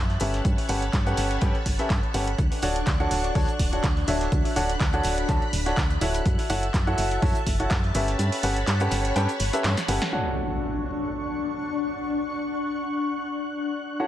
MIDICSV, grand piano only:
0, 0, Header, 1, 2, 480
1, 0, Start_track
1, 0, Key_signature, 2, "major"
1, 0, Tempo, 483871
1, 445, Time_signature, 4, 2, 24, 8
1, 13961, End_track
2, 0, Start_track
2, 0, Title_t, "Grand piano"
2, 0, Program_c, 0, 0
2, 205, Note_on_c, 0, 61, 76
2, 205, Note_on_c, 0, 67, 69
2, 205, Note_on_c, 0, 69, 67
2, 205, Note_on_c, 0, 71, 67
2, 205, Note_on_c, 0, 76, 81
2, 659, Note_off_c, 0, 61, 0
2, 659, Note_off_c, 0, 67, 0
2, 659, Note_off_c, 0, 69, 0
2, 659, Note_off_c, 0, 71, 0
2, 659, Note_off_c, 0, 76, 0
2, 686, Note_on_c, 0, 61, 83
2, 686, Note_on_c, 0, 67, 76
2, 686, Note_on_c, 0, 69, 76
2, 686, Note_on_c, 0, 71, 73
2, 686, Note_on_c, 0, 78, 90
2, 811, Note_off_c, 0, 61, 0
2, 811, Note_off_c, 0, 67, 0
2, 811, Note_off_c, 0, 69, 0
2, 811, Note_off_c, 0, 71, 0
2, 811, Note_off_c, 0, 78, 0
2, 1057, Note_on_c, 0, 67, 81
2, 1057, Note_on_c, 0, 69, 82
2, 1057, Note_on_c, 0, 78, 97
2, 1058, Note_on_c, 0, 61, 88
2, 1058, Note_on_c, 0, 71, 80
2, 1379, Note_off_c, 0, 67, 0
2, 1379, Note_off_c, 0, 69, 0
2, 1379, Note_off_c, 0, 78, 0
2, 1380, Note_off_c, 0, 61, 0
2, 1380, Note_off_c, 0, 71, 0
2, 1405, Note_on_c, 0, 61, 89
2, 1405, Note_on_c, 0, 67, 77
2, 1405, Note_on_c, 0, 69, 78
2, 1405, Note_on_c, 0, 71, 81
2, 1405, Note_on_c, 0, 79, 95
2, 1530, Note_off_c, 0, 61, 0
2, 1530, Note_off_c, 0, 67, 0
2, 1530, Note_off_c, 0, 69, 0
2, 1530, Note_off_c, 0, 71, 0
2, 1530, Note_off_c, 0, 79, 0
2, 1777, Note_on_c, 0, 61, 74
2, 1777, Note_on_c, 0, 67, 71
2, 1777, Note_on_c, 0, 69, 70
2, 1777, Note_on_c, 0, 71, 70
2, 1777, Note_on_c, 0, 76, 83
2, 1953, Note_off_c, 0, 61, 0
2, 1953, Note_off_c, 0, 69, 0
2, 1953, Note_off_c, 0, 76, 0
2, 1954, Note_off_c, 0, 67, 0
2, 1954, Note_off_c, 0, 71, 0
2, 2125, Note_on_c, 0, 61, 79
2, 2125, Note_on_c, 0, 67, 71
2, 2125, Note_on_c, 0, 71, 72
2, 2125, Note_on_c, 0, 78, 84
2, 2126, Note_on_c, 0, 69, 69
2, 2250, Note_off_c, 0, 61, 0
2, 2250, Note_off_c, 0, 67, 0
2, 2250, Note_off_c, 0, 71, 0
2, 2250, Note_off_c, 0, 78, 0
2, 2251, Note_off_c, 0, 69, 0
2, 2605, Note_on_c, 0, 62, 82
2, 2605, Note_on_c, 0, 66, 76
2, 2605, Note_on_c, 0, 69, 76
2, 2605, Note_on_c, 0, 73, 74
2, 2605, Note_on_c, 0, 78, 92
2, 2730, Note_off_c, 0, 62, 0
2, 2730, Note_off_c, 0, 69, 0
2, 2730, Note_off_c, 0, 73, 0
2, 2731, Note_off_c, 0, 66, 0
2, 2731, Note_off_c, 0, 78, 0
2, 2977, Note_on_c, 0, 62, 85
2, 2977, Note_on_c, 0, 66, 79
2, 2977, Note_on_c, 0, 69, 81
2, 2977, Note_on_c, 0, 73, 78
2, 2977, Note_on_c, 0, 78, 99
2, 3299, Note_off_c, 0, 62, 0
2, 3299, Note_off_c, 0, 66, 0
2, 3299, Note_off_c, 0, 69, 0
2, 3299, Note_off_c, 0, 73, 0
2, 3299, Note_off_c, 0, 78, 0
2, 3325, Note_on_c, 0, 66, 77
2, 3325, Note_on_c, 0, 69, 79
2, 3325, Note_on_c, 0, 81, 97
2, 3326, Note_on_c, 0, 62, 86
2, 3326, Note_on_c, 0, 73, 78
2, 3450, Note_off_c, 0, 66, 0
2, 3450, Note_off_c, 0, 69, 0
2, 3450, Note_off_c, 0, 81, 0
2, 3451, Note_off_c, 0, 62, 0
2, 3451, Note_off_c, 0, 73, 0
2, 3698, Note_on_c, 0, 62, 70
2, 3698, Note_on_c, 0, 66, 64
2, 3698, Note_on_c, 0, 69, 63
2, 3698, Note_on_c, 0, 73, 64
2, 3698, Note_on_c, 0, 78, 77
2, 3800, Note_off_c, 0, 62, 0
2, 3800, Note_off_c, 0, 66, 0
2, 3800, Note_off_c, 0, 69, 0
2, 3800, Note_off_c, 0, 73, 0
2, 3800, Note_off_c, 0, 78, 0
2, 4046, Note_on_c, 0, 62, 74
2, 4046, Note_on_c, 0, 66, 67
2, 4046, Note_on_c, 0, 69, 68
2, 4046, Note_on_c, 0, 73, 69
2, 4046, Note_on_c, 0, 76, 84
2, 4500, Note_off_c, 0, 62, 0
2, 4500, Note_off_c, 0, 66, 0
2, 4500, Note_off_c, 0, 69, 0
2, 4500, Note_off_c, 0, 73, 0
2, 4500, Note_off_c, 0, 76, 0
2, 4526, Note_on_c, 0, 62, 84
2, 4526, Note_on_c, 0, 66, 77
2, 4526, Note_on_c, 0, 69, 76
2, 4526, Note_on_c, 0, 73, 75
2, 4526, Note_on_c, 0, 78, 90
2, 4651, Note_off_c, 0, 62, 0
2, 4651, Note_off_c, 0, 66, 0
2, 4651, Note_off_c, 0, 69, 0
2, 4651, Note_off_c, 0, 73, 0
2, 4651, Note_off_c, 0, 78, 0
2, 4897, Note_on_c, 0, 62, 90
2, 4897, Note_on_c, 0, 66, 78
2, 4897, Note_on_c, 0, 69, 79
2, 4897, Note_on_c, 0, 73, 78
2, 4897, Note_on_c, 0, 78, 95
2, 5219, Note_off_c, 0, 62, 0
2, 5219, Note_off_c, 0, 69, 0
2, 5219, Note_off_c, 0, 73, 0
2, 5219, Note_off_c, 0, 78, 0
2, 5220, Note_off_c, 0, 66, 0
2, 5245, Note_on_c, 0, 62, 88
2, 5245, Note_on_c, 0, 81, 98
2, 5246, Note_on_c, 0, 66, 81
2, 5246, Note_on_c, 0, 69, 79
2, 5246, Note_on_c, 0, 73, 78
2, 5370, Note_off_c, 0, 62, 0
2, 5370, Note_off_c, 0, 81, 0
2, 5371, Note_off_c, 0, 66, 0
2, 5371, Note_off_c, 0, 69, 0
2, 5371, Note_off_c, 0, 73, 0
2, 5616, Note_on_c, 0, 78, 78
2, 5617, Note_on_c, 0, 62, 73
2, 5617, Note_on_c, 0, 66, 64
2, 5617, Note_on_c, 0, 69, 66
2, 5617, Note_on_c, 0, 73, 64
2, 5719, Note_off_c, 0, 66, 0
2, 5719, Note_off_c, 0, 78, 0
2, 5720, Note_off_c, 0, 62, 0
2, 5720, Note_off_c, 0, 69, 0
2, 5720, Note_off_c, 0, 73, 0
2, 5965, Note_on_c, 0, 69, 68
2, 5965, Note_on_c, 0, 73, 71
2, 5966, Note_on_c, 0, 64, 77
2, 5966, Note_on_c, 0, 66, 69
2, 5966, Note_on_c, 0, 76, 84
2, 6420, Note_off_c, 0, 64, 0
2, 6420, Note_off_c, 0, 66, 0
2, 6420, Note_off_c, 0, 69, 0
2, 6420, Note_off_c, 0, 73, 0
2, 6420, Note_off_c, 0, 76, 0
2, 6445, Note_on_c, 0, 64, 82
2, 6445, Note_on_c, 0, 66, 76
2, 6445, Note_on_c, 0, 69, 77
2, 6445, Note_on_c, 0, 73, 77
2, 6445, Note_on_c, 0, 78, 93
2, 6570, Note_off_c, 0, 69, 0
2, 6570, Note_off_c, 0, 73, 0
2, 6570, Note_off_c, 0, 78, 0
2, 6571, Note_off_c, 0, 64, 0
2, 6571, Note_off_c, 0, 66, 0
2, 6817, Note_on_c, 0, 64, 89
2, 6817, Note_on_c, 0, 66, 82
2, 6817, Note_on_c, 0, 69, 84
2, 6817, Note_on_c, 0, 73, 82
2, 6817, Note_on_c, 0, 78, 96
2, 7139, Note_off_c, 0, 64, 0
2, 7139, Note_off_c, 0, 66, 0
2, 7139, Note_off_c, 0, 69, 0
2, 7139, Note_off_c, 0, 73, 0
2, 7139, Note_off_c, 0, 78, 0
2, 7166, Note_on_c, 0, 64, 89
2, 7166, Note_on_c, 0, 66, 83
2, 7166, Note_on_c, 0, 69, 81
2, 7166, Note_on_c, 0, 73, 81
2, 7166, Note_on_c, 0, 81, 99
2, 7291, Note_off_c, 0, 64, 0
2, 7291, Note_off_c, 0, 66, 0
2, 7291, Note_off_c, 0, 69, 0
2, 7291, Note_off_c, 0, 73, 0
2, 7291, Note_off_c, 0, 81, 0
2, 7537, Note_on_c, 0, 64, 70
2, 7538, Note_on_c, 0, 66, 66
2, 7538, Note_on_c, 0, 69, 67
2, 7538, Note_on_c, 0, 73, 66
2, 7538, Note_on_c, 0, 78, 79
2, 7640, Note_off_c, 0, 64, 0
2, 7640, Note_off_c, 0, 66, 0
2, 7640, Note_off_c, 0, 69, 0
2, 7640, Note_off_c, 0, 73, 0
2, 7640, Note_off_c, 0, 78, 0
2, 7886, Note_on_c, 0, 61, 75
2, 7886, Note_on_c, 0, 67, 70
2, 7886, Note_on_c, 0, 69, 70
2, 7886, Note_on_c, 0, 71, 69
2, 7886, Note_on_c, 0, 76, 85
2, 8340, Note_off_c, 0, 61, 0
2, 8340, Note_off_c, 0, 67, 0
2, 8340, Note_off_c, 0, 69, 0
2, 8340, Note_off_c, 0, 71, 0
2, 8340, Note_off_c, 0, 76, 0
2, 8366, Note_on_c, 0, 61, 82
2, 8366, Note_on_c, 0, 67, 78
2, 8366, Note_on_c, 0, 69, 77
2, 8366, Note_on_c, 0, 71, 75
2, 8366, Note_on_c, 0, 78, 94
2, 8491, Note_off_c, 0, 61, 0
2, 8491, Note_off_c, 0, 67, 0
2, 8491, Note_off_c, 0, 69, 0
2, 8491, Note_off_c, 0, 71, 0
2, 8491, Note_off_c, 0, 78, 0
2, 8738, Note_on_c, 0, 61, 86
2, 8738, Note_on_c, 0, 67, 83
2, 8738, Note_on_c, 0, 69, 79
2, 8738, Note_on_c, 0, 71, 81
2, 8738, Note_on_c, 0, 78, 101
2, 9060, Note_off_c, 0, 61, 0
2, 9060, Note_off_c, 0, 67, 0
2, 9060, Note_off_c, 0, 69, 0
2, 9060, Note_off_c, 0, 71, 0
2, 9060, Note_off_c, 0, 78, 0
2, 9085, Note_on_c, 0, 69, 82
2, 9086, Note_on_c, 0, 61, 90
2, 9086, Note_on_c, 0, 67, 82
2, 9086, Note_on_c, 0, 71, 81
2, 9086, Note_on_c, 0, 79, 94
2, 9211, Note_off_c, 0, 61, 0
2, 9211, Note_off_c, 0, 67, 0
2, 9211, Note_off_c, 0, 69, 0
2, 9211, Note_off_c, 0, 71, 0
2, 9211, Note_off_c, 0, 79, 0
2, 9457, Note_on_c, 0, 61, 77
2, 9457, Note_on_c, 0, 67, 73
2, 9457, Note_on_c, 0, 69, 71
2, 9457, Note_on_c, 0, 71, 72
2, 9457, Note_on_c, 0, 76, 86
2, 9633, Note_off_c, 0, 61, 0
2, 9634, Note_off_c, 0, 67, 0
2, 9634, Note_off_c, 0, 69, 0
2, 9634, Note_off_c, 0, 71, 0
2, 9634, Note_off_c, 0, 76, 0
2, 9805, Note_on_c, 0, 61, 80
2, 9805, Note_on_c, 0, 69, 72
2, 9805, Note_on_c, 0, 71, 74
2, 9805, Note_on_c, 0, 78, 88
2, 9806, Note_on_c, 0, 67, 73
2, 9930, Note_off_c, 0, 61, 0
2, 9930, Note_off_c, 0, 78, 0
2, 9931, Note_off_c, 0, 67, 0
2, 9931, Note_off_c, 0, 69, 0
2, 9931, Note_off_c, 0, 71, 0
2, 10045, Note_on_c, 0, 78, 76
2, 10046, Note_on_c, 0, 62, 66
2, 10046, Note_on_c, 0, 66, 61
2, 10046, Note_on_c, 0, 69, 65
2, 10046, Note_on_c, 0, 73, 62
2, 13859, Note_off_c, 0, 78, 0
2, 13860, Note_off_c, 0, 62, 0
2, 13860, Note_off_c, 0, 66, 0
2, 13860, Note_off_c, 0, 69, 0
2, 13860, Note_off_c, 0, 73, 0
2, 13885, Note_on_c, 0, 64, 69
2, 13885, Note_on_c, 0, 66, 64
2, 13885, Note_on_c, 0, 69, 64
2, 13885, Note_on_c, 0, 73, 65
2, 13885, Note_on_c, 0, 78, 76
2, 13961, Note_off_c, 0, 64, 0
2, 13961, Note_off_c, 0, 66, 0
2, 13961, Note_off_c, 0, 69, 0
2, 13961, Note_off_c, 0, 73, 0
2, 13961, Note_off_c, 0, 78, 0
2, 13961, End_track
0, 0, End_of_file